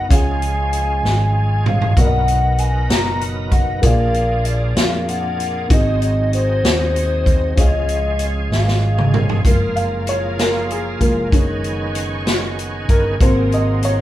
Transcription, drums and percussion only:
0.11 kick, closed hi-hat
0.42 closed hi-hat
0.73 closed hi-hat
1.05 snare
1.66 mid tom
1.81 floor tom
1.97 kick, closed hi-hat
2.28 closed hi-hat
2.58 closed hi-hat
2.90 snare, closed hi-hat
3.21 closed hi-hat
3.52 kick, closed hi-hat
3.83 kick, closed hi-hat
4.14 closed hi-hat
4.45 closed hi-hat
4.77 snare, closed hi-hat
5.09 closed hi-hat
5.40 closed hi-hat
5.70 kick, closed hi-hat
6.02 closed hi-hat
6.33 closed hi-hat
6.65 snare, closed hi-hat
6.96 closed hi-hat
7.26 kick, closed hi-hat
7.57 kick, closed hi-hat
7.89 closed hi-hat
8.19 closed hi-hat
8.52 snare
8.68 snare
8.98 mid tom
9.14 mid tom
9.29 floor tom
9.45 kick, closed hi-hat
9.77 closed hi-hat
10.07 closed hi-hat
10.39 snare, closed hi-hat
10.70 closed hi-hat
11.01 kick, closed hi-hat
11.32 kick, closed hi-hat
11.64 closed hi-hat
11.95 closed hi-hat
12.27 snare, closed hi-hat
12.59 closed hi-hat
12.89 kick, closed hi-hat
13.21 kick, closed hi-hat
13.52 closed hi-hat
13.83 closed hi-hat

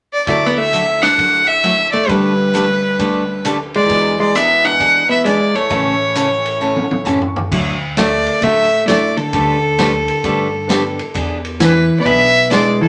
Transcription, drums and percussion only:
0.27 kick, ride
0.73 hi-hat pedal, ride
1.03 snare, ride
1.18 kick, ride
1.64 hi-hat pedal, ride
1.93 ride
2.09 kick, ride
2.54 hi-hat pedal, ride
2.99 kick, ride
3.45 hi-hat pedal, ride
3.74 ride
3.90 kick, ride
4.35 hi-hat pedal, ride
4.65 ride
4.80 kick, ride
5.26 hi-hat pedal, ride
5.55 ride
5.71 kick, ride
6.15 hi-hat pedal, ride
6.46 ride
6.76 high tom
6.91 high tom
7.06 floor tom, hi-hat pedal
7.21 floor tom
7.36 floor tom
7.52 kick, crash
7.97 snare, hi-hat pedal, ride
8.27 ride
8.42 kick, ride
8.88 snare, hi-hat pedal, ride
9.17 ride
9.33 kick, ride
9.79 snare, hi-hat pedal, ride
10.08 ride
10.24 kick, ride
10.70 snare, hi-hat pedal, ride
10.99 ride
11.15 kick, ride
11.45 ride
11.60 snare, hi-hat pedal, ride
12.05 kick, ride
12.51 snare, hi-hat pedal, ride

